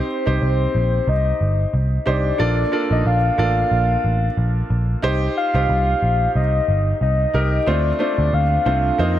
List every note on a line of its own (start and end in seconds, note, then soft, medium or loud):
0.00 0.26 D#4 medium
0.00 0.26 G4 medium
0.00 0.27 C5 medium
0.00 0.38 C5 loud
0.26 0.37 C2 medium
0.26 1.10 D#4 medium
0.26 1.11 G4 medium
0.26 1.11 C5 medium
0.41 0.65 C2 loud
0.41 1.10 C5 loud
0.75 0.98 A#1 medium
1.07 1.31 C2 loud
1.07 1.74 D#5 loud
1.41 1.64 G1 medium
1.73 1.97 C2 loud
2.06 2.30 C2 medium
2.06 2.28 D#4 medium
2.06 2.29 G4 medium
2.06 2.29 C5 medium
2.06 2.87 D5 loud
2.38 2.63 A#1 loud
2.38 2.61 A#3 medium
2.38 2.61 D4 medium
2.38 2.62 F4 medium
2.38 2.62 A4 medium
2.38 2.62 D5 medium
2.72 3.16 A#3 medium
2.72 3.16 D4 medium
2.72 3.16 F4 medium
2.72 3.16 A4 medium
2.72 3.16 D5 medium
2.91 3.01 A#1 loud
2.91 3.05 D#5 loud
3.05 3.29 A#1 loud
3.05 4.67 F5 loud
3.38 3.62 A1 medium
3.38 4.25 A#3 medium
3.38 4.25 D4 medium
3.38 4.25 F4 medium
3.38 4.25 A4 medium
3.38 4.25 D5 medium
3.71 3.95 A#1 loud
4.04 4.28 A1 loud
4.37 4.61 A#1 loud
4.70 4.94 A#1 loud
5.02 5.27 C2 medium
5.02 5.35 D#4 medium
5.02 5.35 G4 medium
5.02 5.36 C5 loud
5.37 6.32 F5 loud
5.54 5.65 C2 loud
5.54 6.38 D#4 medium
5.54 6.38 G4 medium
5.54 6.39 C5 medium
5.69 5.93 C2 loud
6.02 6.26 A#1 medium
6.35 6.59 C2 loud
6.35 6.97 D#5 loud
6.68 6.92 G1 medium
7.01 7.25 C2 loud
7.01 7.70 D#5 loud
7.34 7.58 C2 loud
7.34 7.56 D#4 medium
7.34 7.56 G4 medium
7.34 7.57 A#4 medium
7.66 7.91 D2 loud
7.66 7.89 A3 medium
7.66 7.89 C4 medium
7.66 7.89 D4 medium
7.66 7.90 F4 medium
7.66 7.90 C5 medium
7.66 8.00 D5 loud
7.99 8.43 A3 medium
7.99 8.43 C4 medium
7.99 8.43 D4 medium
7.99 8.43 F4 medium
7.99 8.44 C5 medium
7.99 8.35 D5 loud
8.18 8.29 D2 loud
8.33 8.57 D2 loud
8.33 9.02 F5 loud
8.65 8.89 C2 medium
8.65 8.98 A3 medium
8.65 8.97 C4 medium
8.65 8.99 D4 medium
8.65 8.98 F4 medium
8.65 8.98 C5 medium
8.98 9.19 F2 loud
8.98 9.19 A#3 medium
8.98 9.19 C4 medium
8.98 9.19 D#4 medium
8.98 9.19 F4 medium
8.98 9.19 C5 medium
8.98 9.19 D#5 loud